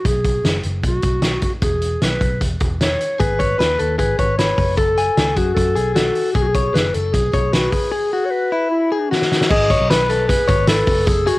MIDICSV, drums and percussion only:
0, 0, Header, 1, 2, 480
1, 0, Start_track
1, 0, Key_signature, 4, "major"
1, 0, Tempo, 393443
1, 73, Time_signature, 4, 2, 24, 8
1, 13892, End_track
2, 0, Start_track
2, 0, Title_t, "Drums"
2, 60, Note_on_c, 9, 36, 92
2, 61, Note_on_c, 9, 42, 80
2, 182, Note_off_c, 9, 36, 0
2, 183, Note_off_c, 9, 42, 0
2, 298, Note_on_c, 9, 36, 73
2, 298, Note_on_c, 9, 42, 63
2, 420, Note_off_c, 9, 36, 0
2, 420, Note_off_c, 9, 42, 0
2, 544, Note_on_c, 9, 42, 77
2, 545, Note_on_c, 9, 38, 91
2, 666, Note_off_c, 9, 42, 0
2, 667, Note_off_c, 9, 38, 0
2, 771, Note_on_c, 9, 42, 60
2, 893, Note_off_c, 9, 42, 0
2, 1017, Note_on_c, 9, 42, 74
2, 1018, Note_on_c, 9, 36, 76
2, 1139, Note_off_c, 9, 42, 0
2, 1140, Note_off_c, 9, 36, 0
2, 1246, Note_on_c, 9, 42, 63
2, 1259, Note_on_c, 9, 36, 76
2, 1368, Note_off_c, 9, 42, 0
2, 1381, Note_off_c, 9, 36, 0
2, 1486, Note_on_c, 9, 42, 80
2, 1489, Note_on_c, 9, 38, 92
2, 1608, Note_off_c, 9, 42, 0
2, 1611, Note_off_c, 9, 38, 0
2, 1727, Note_on_c, 9, 42, 66
2, 1736, Note_on_c, 9, 36, 76
2, 1849, Note_off_c, 9, 42, 0
2, 1858, Note_off_c, 9, 36, 0
2, 1972, Note_on_c, 9, 42, 83
2, 1977, Note_on_c, 9, 36, 97
2, 2094, Note_off_c, 9, 42, 0
2, 2099, Note_off_c, 9, 36, 0
2, 2215, Note_on_c, 9, 42, 69
2, 2337, Note_off_c, 9, 42, 0
2, 2460, Note_on_c, 9, 42, 81
2, 2462, Note_on_c, 9, 38, 88
2, 2582, Note_off_c, 9, 42, 0
2, 2584, Note_off_c, 9, 38, 0
2, 2697, Note_on_c, 9, 36, 76
2, 2700, Note_on_c, 9, 42, 57
2, 2819, Note_off_c, 9, 36, 0
2, 2822, Note_off_c, 9, 42, 0
2, 2942, Note_on_c, 9, 36, 72
2, 2942, Note_on_c, 9, 42, 74
2, 3064, Note_off_c, 9, 36, 0
2, 3064, Note_off_c, 9, 42, 0
2, 3175, Note_on_c, 9, 42, 64
2, 3183, Note_on_c, 9, 36, 84
2, 3297, Note_off_c, 9, 42, 0
2, 3305, Note_off_c, 9, 36, 0
2, 3423, Note_on_c, 9, 42, 84
2, 3426, Note_on_c, 9, 38, 93
2, 3545, Note_off_c, 9, 42, 0
2, 3548, Note_off_c, 9, 38, 0
2, 3666, Note_on_c, 9, 42, 66
2, 3788, Note_off_c, 9, 42, 0
2, 3904, Note_on_c, 9, 42, 75
2, 3906, Note_on_c, 9, 36, 96
2, 4026, Note_off_c, 9, 42, 0
2, 4028, Note_off_c, 9, 36, 0
2, 4145, Note_on_c, 9, 42, 67
2, 4146, Note_on_c, 9, 36, 69
2, 4267, Note_off_c, 9, 42, 0
2, 4268, Note_off_c, 9, 36, 0
2, 4393, Note_on_c, 9, 42, 78
2, 4395, Note_on_c, 9, 38, 97
2, 4515, Note_off_c, 9, 42, 0
2, 4517, Note_off_c, 9, 38, 0
2, 4626, Note_on_c, 9, 42, 62
2, 4748, Note_off_c, 9, 42, 0
2, 4867, Note_on_c, 9, 36, 75
2, 4867, Note_on_c, 9, 42, 83
2, 4989, Note_off_c, 9, 36, 0
2, 4989, Note_off_c, 9, 42, 0
2, 5107, Note_on_c, 9, 42, 66
2, 5110, Note_on_c, 9, 36, 82
2, 5229, Note_off_c, 9, 42, 0
2, 5232, Note_off_c, 9, 36, 0
2, 5350, Note_on_c, 9, 42, 89
2, 5353, Note_on_c, 9, 38, 86
2, 5472, Note_off_c, 9, 42, 0
2, 5475, Note_off_c, 9, 38, 0
2, 5587, Note_on_c, 9, 36, 83
2, 5587, Note_on_c, 9, 46, 62
2, 5709, Note_off_c, 9, 36, 0
2, 5709, Note_off_c, 9, 46, 0
2, 5819, Note_on_c, 9, 42, 80
2, 5826, Note_on_c, 9, 36, 102
2, 5941, Note_off_c, 9, 42, 0
2, 5948, Note_off_c, 9, 36, 0
2, 6066, Note_on_c, 9, 42, 73
2, 6188, Note_off_c, 9, 42, 0
2, 6309, Note_on_c, 9, 42, 78
2, 6310, Note_on_c, 9, 38, 93
2, 6431, Note_off_c, 9, 42, 0
2, 6432, Note_off_c, 9, 38, 0
2, 6541, Note_on_c, 9, 42, 61
2, 6547, Note_on_c, 9, 36, 75
2, 6663, Note_off_c, 9, 42, 0
2, 6669, Note_off_c, 9, 36, 0
2, 6790, Note_on_c, 9, 36, 77
2, 6796, Note_on_c, 9, 42, 81
2, 6912, Note_off_c, 9, 36, 0
2, 6918, Note_off_c, 9, 42, 0
2, 7028, Note_on_c, 9, 42, 65
2, 7150, Note_off_c, 9, 42, 0
2, 7268, Note_on_c, 9, 42, 84
2, 7271, Note_on_c, 9, 38, 92
2, 7390, Note_off_c, 9, 42, 0
2, 7393, Note_off_c, 9, 38, 0
2, 7502, Note_on_c, 9, 46, 64
2, 7624, Note_off_c, 9, 46, 0
2, 7742, Note_on_c, 9, 42, 75
2, 7746, Note_on_c, 9, 36, 99
2, 7864, Note_off_c, 9, 42, 0
2, 7868, Note_off_c, 9, 36, 0
2, 7982, Note_on_c, 9, 42, 69
2, 7985, Note_on_c, 9, 36, 77
2, 8104, Note_off_c, 9, 42, 0
2, 8107, Note_off_c, 9, 36, 0
2, 8236, Note_on_c, 9, 42, 81
2, 8238, Note_on_c, 9, 38, 90
2, 8358, Note_off_c, 9, 42, 0
2, 8360, Note_off_c, 9, 38, 0
2, 8467, Note_on_c, 9, 42, 67
2, 8589, Note_off_c, 9, 42, 0
2, 8708, Note_on_c, 9, 36, 78
2, 8708, Note_on_c, 9, 42, 86
2, 8830, Note_off_c, 9, 36, 0
2, 8830, Note_off_c, 9, 42, 0
2, 8947, Note_on_c, 9, 42, 70
2, 8949, Note_on_c, 9, 36, 80
2, 9069, Note_off_c, 9, 42, 0
2, 9071, Note_off_c, 9, 36, 0
2, 9188, Note_on_c, 9, 42, 96
2, 9191, Note_on_c, 9, 38, 94
2, 9310, Note_off_c, 9, 42, 0
2, 9313, Note_off_c, 9, 38, 0
2, 9420, Note_on_c, 9, 46, 70
2, 9425, Note_on_c, 9, 36, 77
2, 9542, Note_off_c, 9, 46, 0
2, 9547, Note_off_c, 9, 36, 0
2, 11126, Note_on_c, 9, 38, 55
2, 11243, Note_off_c, 9, 38, 0
2, 11243, Note_on_c, 9, 38, 59
2, 11365, Note_off_c, 9, 38, 0
2, 11367, Note_on_c, 9, 38, 77
2, 11481, Note_off_c, 9, 38, 0
2, 11481, Note_on_c, 9, 38, 84
2, 11594, Note_on_c, 9, 49, 101
2, 11597, Note_on_c, 9, 36, 118
2, 11603, Note_off_c, 9, 38, 0
2, 11716, Note_off_c, 9, 49, 0
2, 11719, Note_off_c, 9, 36, 0
2, 11834, Note_on_c, 9, 42, 77
2, 11835, Note_on_c, 9, 36, 83
2, 11956, Note_off_c, 9, 42, 0
2, 11957, Note_off_c, 9, 36, 0
2, 12083, Note_on_c, 9, 42, 95
2, 12085, Note_on_c, 9, 38, 108
2, 12205, Note_off_c, 9, 42, 0
2, 12207, Note_off_c, 9, 38, 0
2, 12316, Note_on_c, 9, 42, 70
2, 12438, Note_off_c, 9, 42, 0
2, 12556, Note_on_c, 9, 36, 85
2, 12561, Note_on_c, 9, 42, 91
2, 12678, Note_off_c, 9, 36, 0
2, 12683, Note_off_c, 9, 42, 0
2, 12787, Note_on_c, 9, 42, 77
2, 12794, Note_on_c, 9, 36, 96
2, 12909, Note_off_c, 9, 42, 0
2, 12916, Note_off_c, 9, 36, 0
2, 13020, Note_on_c, 9, 42, 102
2, 13023, Note_on_c, 9, 38, 104
2, 13142, Note_off_c, 9, 42, 0
2, 13145, Note_off_c, 9, 38, 0
2, 13258, Note_on_c, 9, 46, 81
2, 13266, Note_on_c, 9, 36, 91
2, 13380, Note_off_c, 9, 46, 0
2, 13388, Note_off_c, 9, 36, 0
2, 13501, Note_on_c, 9, 42, 91
2, 13508, Note_on_c, 9, 36, 116
2, 13623, Note_off_c, 9, 42, 0
2, 13630, Note_off_c, 9, 36, 0
2, 13747, Note_on_c, 9, 42, 79
2, 13869, Note_off_c, 9, 42, 0
2, 13892, End_track
0, 0, End_of_file